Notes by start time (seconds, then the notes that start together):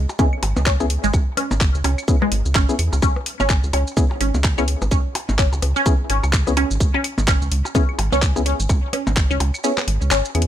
0.09 percussion blips, shaker
0.19 B3 C#4 E4 G#4, kick, percussion blips, shaker
0.33 claves
0.43 G#1, open hi-hat, percussion blips
0.57 C#2, percussion blips, shaker
0.66 C#4, kick, clap, shaker
0.80 B3 C#4 E4 G#4, percussion blips, shaker
0.90 open hi-hat
1.04 G#1 G#3, shaker
1.14 C#2, kick, percussion blips, claves, shaker
1.37 C#4, open hi-hat, percussion blips
1.51 G#1, percussion blips, shaker
1.61 kick, clap, shaker
1.75 C#2, shaker
1.84 C#2 C#4, open hi-hat, percussion blips
1.98 claves, shaker
2.08 B3 C#4 E4 G#4, kick, shaker
2.22 G#3, percussion blips
2.32 G#1, open hi-hat
2.46 C#2, shaker
2.55 G#1 C#4, kick, clap, percussion blips, shaker
2.69 B3 C#4 E4 G#4, shaker
2.79 E2, open hi-hat, claves
2.93 C#2, percussion blips, shaker
3.02 C#2 C#4, kick, percussion blips, shaker
3.16 percussion blips
3.26 open hi-hat
3.40 G#1 C#4, percussion blips, shaker
3.50 kick, clap, shaker
3.64 C#2, shaker
3.73 C#2 C#4, open hi-hat, percussion blips, claves
3.87 shaker
3.97 B3 C#4 E4 G#4, kick, percussion blips, shaker
4.11 percussion blips
4.21 G#1 C#4, open hi-hat
4.34 C#2, percussion blips, shaker
4.44 kick, clap, percussion blips, shaker
4.58 B3 C#4 E4 G#4, claves, shaker
4.68 open hi-hat
4.82 G#1, percussion blips, shaker
4.91 C#2 C#4, kick, shaker
5.15 open hi-hat, percussion blips
5.29 G#1, percussion blips, shaker
5.39 C#4, kick, clap, claves, shaker
5.53 C#2, percussion blips, shaker
5.62 C#2, open hi-hat, percussion blips
5.76 C#4, shaker
5.86 B3 C#4 E4 G#4, kick, percussion blips, shaker
6.10 G#1 C#4, open hi-hat
6.24 C#2, percussion blips, claves, shaker
6.33 kick, clap, shaker
6.47 B3 C#4 E4 G#4, percussion blips, shaker
6.57 C#4, open hi-hat, percussion blips
6.71 G#1, shaker
6.80 C#2, kick, shaker
6.94 C#4, percussion blips
7.04 open hi-hat, claves
7.18 G#1, percussion blips, shaker
7.28 C#4, kick, clap, percussion blips, shaker
7.42 C#2, shaker
7.51 C#2, open hi-hat
7.65 percussion blips, shaker
7.75 B3 C#4 E4 G#4, kick, percussion blips, shaker
7.89 claves
7.99 G#1, open hi-hat, percussion blips
8.12 C#2 C#4, percussion blips, shaker
8.22 kick, clap, shaker
8.36 B3 C#4 E4 G#4, percussion blips, shaker
8.46 C#4, open hi-hat
8.60 G#1, shaker
8.69 C#2, kick, percussion blips, claves, shaker
8.93 C#4, open hi-hat, percussion blips
9.07 G#1, percussion blips, shaker
9.17 kick, clap, shaker
9.31 C#2 C#4, shaker
9.40 C#2, open hi-hat, percussion blips
9.54 claves, shaker
9.64 B3 C#4 E4 G#4, shaker
9.78 clap, percussion blips, shaker
9.87 G#1, open hi-hat
10.01 C#2, shaker
10.11 G#1 C#4, clap, percussion blips, shaker
10.25 shaker
10.35 E2 B3 C#4 E4 G#4, closed hi-hat, claves
10.42 closed hi-hat